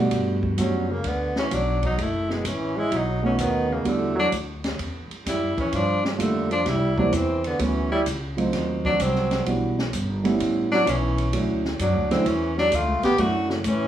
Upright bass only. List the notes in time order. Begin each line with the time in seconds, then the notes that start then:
0.11 G2
0.58 F#2
1.04 D2
1.51 B1
1.98 F#1
2.45 A1
2.92 B1
3.39 D#2
3.85 E2
4.32 D2
4.79 E2
5.11 muted upright bass stroke
5.26 F#2
5.57 muted upright bass stroke
5.72 G2
6.19 F2
6.66 C2
7.12 E2
7.59 D2
8.06 C#2
8.53 D#2
9.00 C2
9.46 B1
9.93 G1
10.40 A1
10.87 B1
11.33 D2
11.79 F#2
11.95 D2
12.10 C#2
12.26 E2
12.72 D2
12.87 C#2
13.02 A1
13.18 F#2
13.65 A2